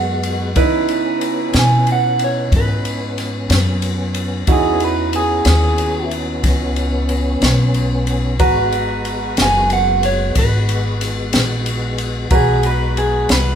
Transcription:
0.00 0.54 F#2 medium
0.00 0.52 G#3 medium
0.00 0.52 B3 medium
0.00 0.52 F#4 medium
0.00 0.53 F#4 soft
0.00 0.53 A#4 medium
0.00 0.87 F#5 medium
0.23 ride medium
0.55 1.51 C#3 medium
0.55 4.44 B3 medium
0.55 4.44 C#4 medium
0.55 4.44 D#4 medium
0.55 4.44 E4 medium
0.55 4.44 B4 medium
0.55 kick loud
0.55 ride medium
0.89 ride medium
1.21 ride medium
1.53 2.49 B2 medium
1.53 snare loud
1.53 ride medium
1.59 1.88 G#5 medium
1.87 ride medium
1.92 2.21 F#5 medium
2.19 ride medium
2.24 2.54 C#5 medium
2.52 3.47 G#2 medium
2.52 kick medium
2.52 ride medium
2.57 4.46 B4 medium
2.85 ride medium
3.18 snare soft
3.18 ride medium
3.49 4.45 F#2 medium
3.49 snare loud
3.49 ride medium
3.82 ride medium
4.14 ride medium
4.47 5.43 E2 medium
4.47 8.36 B3 medium
4.47 8.36 C#4 medium
4.47 8.36 D#4 soft
4.47 8.36 E4 soft
4.47 8.36 F#4 medium
4.47 kick loud
4.47 ride medium
4.52 4.82 G#4 medium
4.80 ride medium
4.84 5.14 B4 medium
5.13 5.46 G#4 medium
5.13 ride medium
5.45 6.41 D#2 medium
5.45 snare loud
5.45 ride medium
5.49 6.11 G#4 loud
5.78 ride medium
6.11 ride medium
6.43 7.39 C#2 medium
6.43 kick medium
6.43 snare soft
6.43 ride medium
6.76 ride medium
7.09 ride medium
7.41 8.37 B1 medium
7.41 snare loud
7.41 ride medium
7.74 ride medium
8.07 ride medium
8.39 9.35 G#1 medium
8.39 12.28 G#3 medium
8.39 12.28 B3 medium
8.39 12.27 F#4 medium
8.39 12.28 F#4 medium
8.39 12.28 B4 medium
8.39 12.28 A#5 medium
8.39 kick medium
8.39 ride medium
8.72 ride medium
9.05 ride medium
9.37 10.33 F#1 medium
9.37 snare loud
9.37 ride medium
9.42 9.72 G#5 medium
9.70 10.03 F#5 medium
9.70 ride medium
10.03 10.36 C#5 medium
10.03 ride medium
10.35 11.31 G#1 medium
10.35 12.29 B4 loud
10.35 kick medium
10.35 ride medium
10.69 ride medium
11.01 snare soft
11.01 ride medium
11.33 12.29 A#1 medium
11.33 snare loud
11.33 ride medium
11.66 ride medium
11.98 ride medium
12.30 13.26 B1 medium
12.30 13.55 G#3 medium
12.30 13.55 B3 medium
12.30 13.55 F#4 soft
12.30 13.55 F#4 medium
12.30 13.55 B4 medium
12.30 13.55 A#5 soft
12.30 kick loud
12.30 ride medium
12.35 12.65 G#4 medium
12.63 12.97 B4 medium
12.63 ride medium
12.97 13.29 G#4 medium
12.97 ride medium
13.29 13.55 C2 medium
13.29 13.55 B4 medium
13.29 snare loud
13.29 ride medium

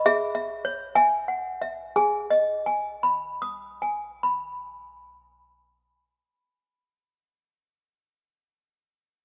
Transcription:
0.06 0.34 G#4 medium
0.06 0.34 E5 medium
0.35 0.66 E5 medium
0.65 0.97 C#5 soft
0.95 1.29 E5 soft
0.95 1.92 G#5 medium
1.28 1.62 F#5 soft
1.62 1.96 E5 soft
1.96 5.60 G#4 medium
1.96 2.65 G#5 medium
2.30 5.94 D#5 soft
2.66 3.81 G#5 soft
3.03 4.22 B5 soft
3.42 7.05 D#6 soft
3.82 7.45 G#5 soft
4.23 7.48 B5 soft

